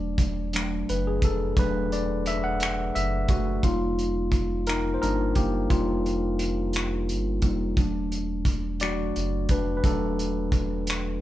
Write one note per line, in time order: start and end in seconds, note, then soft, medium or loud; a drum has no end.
0.00 0.84 E1 loud
0.00 0.49 F#3 medium
0.00 0.49 A3 medium
0.00 0.50 D4 medium
0.00 1.93 D5 medium
0.18 kick medium
0.18 closed hi-hat medium
0.53 0.84 F#3 soft
0.53 0.85 A3 soft
0.53 0.85 D4 medium
0.53 finger snap loud
0.53 closed hi-hat medium
0.89 1.20 F#1 medium
0.89 1.05 B4 medium
0.89 closed hi-hat medium
1.07 1.22 G#4 medium
1.22 1.54 F1 medium
1.22 1.39 A4 medium
1.22 kick medium
1.22 closed hi-hat medium
1.57 2.91 E1 loud
1.57 2.57 F#3 medium
1.57 2.57 A3 medium
1.57 2.57 D4 medium
1.57 1.90 B4 medium
1.57 kick loud
1.57 closed hi-hat medium
1.92 2.24 D5 medium
1.92 closed hi-hat medium
2.26 2.43 E5 loud
2.26 closed hi-hat medium
2.44 2.96 F#5 loud
2.60 finger snap loud
2.60 closed hi-hat medium
2.95 3.26 F#1 loud
2.95 3.60 E5 loud
2.95 closed hi-hat medium
3.28 3.60 F#1 medium
3.28 3.62 A3 medium
3.28 3.62 F#4 medium
3.28 kick medium
3.28 closed hi-hat medium
3.63 4.98 F1 loud
3.63 4.10 G3 medium
3.63 4.64 A#3 medium
3.63 4.10 D#4 medium
3.63 4.70 F4 medium
3.63 kick medium
3.63 closed hi-hat medium
3.99 closed hi-hat soft
4.32 kick medium
4.32 closed hi-hat medium
4.67 4.93 D#4 medium
4.67 4.95 A#4 loud
4.67 finger snap medium
4.67 closed hi-hat medium
4.94 5.01 C5 medium
5.02 5.33 G1 medium
5.02 5.33 G3 soft
5.02 5.33 A#3 soft
5.02 5.35 D4 medium
5.02 5.33 D#4 soft
5.02 5.37 A#4 medium
5.02 closed hi-hat medium
5.35 5.67 F#1 medium
5.35 5.53 A#3 medium
5.35 5.51 G4 medium
5.35 kick medium
5.35 closed hi-hat medium
5.70 7.11 F1 loud
5.70 6.70 G3 soft
5.70 7.40 A#3 medium
5.70 6.71 D#4 medium
5.70 7.39 F4 medium
5.70 kick loud
5.70 closed hi-hat medium
6.06 closed hi-hat soft
6.39 closed hi-hat medium
6.73 finger snap loud
6.73 closed hi-hat medium
7.09 7.40 G1 medium
7.09 closed hi-hat soft
7.42 7.74 F1 medium
7.42 7.74 G3 soft
7.42 7.74 A#3 soft
7.42 7.75 D#4 soft
7.42 kick medium
7.42 closed hi-hat medium
7.77 9.12 E1 medium
7.77 8.23 F#3 medium
7.77 8.24 A3 soft
7.77 8.24 D4 medium
7.77 kick loud
7.77 closed hi-hat medium
8.12 closed hi-hat soft
8.45 kick medium
8.45 closed hi-hat medium
8.80 9.12 F#3 soft
8.80 9.12 A3 soft
8.80 9.13 D4 soft
8.80 9.47 F#4 medium
8.80 9.46 D5 loud
8.80 finger snap loud
8.80 closed hi-hat medium
9.16 9.47 F#1 medium
9.16 closed hi-hat medium
9.49 9.81 F1 medium
9.49 9.64 D4 medium
9.49 9.63 B4 medium
9.49 kick medium
9.49 closed hi-hat medium
9.77 9.84 B4 medium
9.84 11.18 E1 loud
9.84 10.30 F#3 medium
9.84 10.31 A3 soft
9.84 10.85 D4 medium
9.84 10.84 A4 medium
9.84 kick medium
9.84 closed hi-hat medium
10.19 closed hi-hat soft
10.52 kick medium
10.52 closed hi-hat medium
10.87 finger snap loud
10.87 closed hi-hat medium